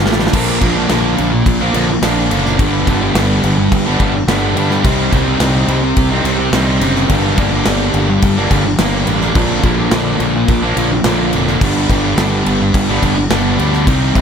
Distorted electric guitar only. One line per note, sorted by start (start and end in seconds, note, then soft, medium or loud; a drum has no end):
0.06 0.32 G2 medium
0.06 0.32 D3 medium
0.06 0.32 G3 loud
0.34 0.88 A#2 loud
0.34 0.60 D3 loud
0.34 0.62 F3 loud
0.34 0.62 A#3 loud
0.34 0.63 D4 loud
0.61 0.89 D3 medium
0.61 0.78 F3 medium
0.61 0.76 A#3 medium
0.61 0.75 D4 medium
0.75 0.91 F3 medium
0.75 0.90 A#3 medium
0.75 0.92 D4 medium
0.90 1.60 A#2 loud
0.90 1.32 D3 loud
0.90 1.32 F3 loud
0.90 1.32 A#3 loud
0.90 1.32 D4 loud
1.33 muted distorted electric guitar stroke medium
1.61 1.74 F3 medium
1.61 1.75 A#3 medium
1.61 1.76 D4 medium
1.75 1.89 D3 medium
1.75 1.88 F3 medium
1.75 1.88 A#3 medium
1.75 1.88 D4 medium
1.89 muted distorted electric guitar stroke medium
2.02 2.57 A#2 medium
2.02 2.29 D3 medium
2.02 2.30 F3 loud
2.02 2.30 A#3 loud
2.02 2.31 D4 loud
2.30 2.57 D3 medium
2.30 2.46 F3 medium
2.30 2.45 A#3 medium
2.30 2.44 D4 medium
2.45 2.58 F3 medium
2.45 2.58 A#3 medium
2.45 2.57 D4 medium
2.59 3.14 G2 loud
2.59 2.86 D3 loud
2.59 2.88 G3 loud
2.59 2.88 B3 loud
2.59 2.88 D4 loud
2.87 3.14 D3 medium
2.87 3.03 G3 medium
2.87 3.01 B3 medium
2.87 3.00 D4 medium
3.01 3.16 G3 medium
3.01 3.15 B3 medium
3.01 3.16 D4 medium
3.15 3.86 G2 loud
3.15 3.58 D3 loud
3.15 3.58 G3 loud
3.15 3.57 B3 loud
3.15 3.57 D4 loud
3.58 muted distorted electric guitar stroke medium
3.86 4.00 G3 medium
3.86 4.00 B3 medium
3.86 4.01 D4 medium
3.99 4.14 D3 medium
3.99 4.14 G3 medium
3.99 4.14 B3 medium
3.99 4.13 D4 medium
4.15 muted distorted electric guitar stroke medium
4.29 4.83 G2 medium
4.29 4.56 D3 loud
4.29 4.57 G3 loud
4.29 4.57 B3 loud
4.29 4.58 D4 loud
4.57 4.83 D3 medium
4.57 4.72 G3 medium
4.57 4.70 B3 medium
4.57 4.69 D4 medium
4.70 4.85 G3 medium
4.70 4.83 B3 medium
4.70 4.83 D4 medium
4.85 5.11 C3 loud
4.85 5.13 G3 loud
4.85 5.13 C4 loud
4.85 5.13 D#4 loud
5.12 5.39 C3 medium
5.12 5.28 G3 medium
5.12 5.27 C4 medium
5.12 5.25 D#4 medium
5.27 5.41 G3 medium
5.27 5.40 C4 medium
5.27 5.41 D#4 medium
5.40 6.11 C3 loud
5.40 5.83 G3 loud
5.40 5.82 C4 loud
5.40 5.82 D#4 loud
5.83 muted distorted electric guitar stroke medium
6.10 6.25 G3 medium
6.10 6.24 C4 medium
6.10 6.25 D#4 medium
6.24 6.52 C3 medium
6.24 6.39 G3 medium
6.24 6.38 C4 medium
6.24 6.38 D#4 medium
6.39 muted distorted electric guitar stroke medium
6.53 6.80 C3 loud
6.53 6.82 G3 loud
6.53 6.82 C4 loud
6.53 6.82 D#4 loud
6.81 7.08 C3 medium
6.81 6.97 G3 medium
6.81 6.95 C4 medium
6.81 6.94 D#4 medium
6.95 7.10 G3 medium
6.95 7.09 C4 medium
6.95 7.08 D#4 medium
7.09 7.65 G2 loud
7.09 7.37 D3 medium
7.09 7.38 G3 loud
7.09 7.39 A#3 loud
7.09 7.39 D4 loud
7.38 7.66 D3 medium
7.38 7.54 G3 medium
7.38 7.53 A#3 medium
7.38 7.52 D4 medium
7.52 7.67 G3 medium
7.52 7.68 A#3 medium
7.52 7.68 D4 medium
7.67 8.37 G2 loud
7.67 8.09 D3 loud
7.67 8.10 G3 loud
7.67 8.08 A#3 loud
7.67 8.09 D4 loud
8.09 muted distorted electric guitar stroke medium
8.37 8.51 G3 medium
8.37 8.51 A#3 medium
8.37 8.53 D4 medium
8.51 8.64 D3 medium
8.51 8.65 G3 medium
8.51 8.64 A#3 medium
8.51 8.65 D4 medium
8.65 muted distorted electric guitar stroke medium
8.79 9.34 G2 medium
8.79 9.06 D3 loud
8.79 9.08 G3 loud
8.79 9.08 A#3 loud
8.79 9.09 D4 loud
9.07 9.34 D3 medium
9.07 9.23 G3 medium
9.07 9.21 A#3 medium
9.07 9.21 D4 medium
9.22 9.36 G3 medium
9.22 9.35 A#3 medium
9.22 9.37 D4 medium
9.35 9.91 A#2 medium
9.35 9.62 D3 loud
9.35 9.64 F3 loud
9.35 9.64 A#3 loud
9.35 9.65 D4 loud
9.63 9.92 D3 medium
9.63 9.80 F3 medium
9.63 9.78 A#3 medium
9.63 9.78 D4 medium
9.78 9.93 F3 medium
9.78 9.93 A#3 medium
9.78 9.94 D4 medium
9.92 10.63 A#2 loud
9.92 10.35 D3 loud
9.92 10.35 F3 loud
9.92 10.34 A#3 loud
9.92 10.34 D4 loud
10.36 muted distorted electric guitar stroke medium
10.63 10.77 F3 medium
10.63 10.77 A#3 medium
10.63 10.78 D4 medium
10.77 10.92 D3 medium
10.77 10.92 F3 medium
10.77 10.92 A#3 medium
10.77 10.91 D4 medium
10.92 muted distorted electric guitar stroke medium
11.05 11.60 A#2 loud
11.05 11.32 D3 loud
11.05 11.33 F3 medium
11.05 11.34 A#3 medium
11.05 11.35 D4 loud
11.34 11.60 D3 medium
11.34 11.49 F3 medium
11.34 11.48 A#3 medium
11.34 11.47 D4 medium
11.48 11.61 F3 medium
11.48 11.61 A#3 medium
11.48 11.60 D4 medium
11.62 12.17 G2 loud
11.62 11.89 D3 loud
11.62 11.91 G3 loud
11.62 11.91 B3 loud
11.62 11.91 D4 loud
11.91 12.17 D3 medium
11.91 12.06 G3 medium
11.91 12.04 B3 medium
11.91 12.03 D4 medium
12.04 12.19 G3 medium
12.04 12.19 B3 medium
12.04 12.19 D4 medium
12.19 12.89 G2 medium
12.19 12.60 D3 loud
12.19 12.61 G3 loud
12.19 12.60 B3 loud
12.19 12.60 D4 loud
12.61 muted distorted electric guitar stroke medium
12.89 13.03 G3 medium
12.89 13.03 B3 medium
12.89 13.04 D4 medium
13.03 13.16 D3 medium
13.03 13.17 G3 medium
13.03 13.16 B3 medium
13.03 13.15 D4 medium
13.17 muted distorted electric guitar stroke medium
13.30 13.85 G2 loud
13.30 13.57 D3 medium
13.30 13.59 G3 medium
13.30 13.59 B3 loud
13.30 13.59 D4 loud
13.58 13.85 D3 medium
13.58 13.74 G3 medium
13.58 13.73 B3 medium
13.58 13.71 D4 medium
13.72 13.87 G3 medium
13.72 13.86 B3 medium
13.72 13.85 D4 medium
13.87 14.14 C3 loud
13.87 14.16 G3 loud
13.87 14.16 C4 loud
13.87 14.17 D#4 loud
14.16 14.21 C3 medium
14.16 14.21 G3 medium
14.16 14.21 C4 loud
14.16 14.21 D#4 loud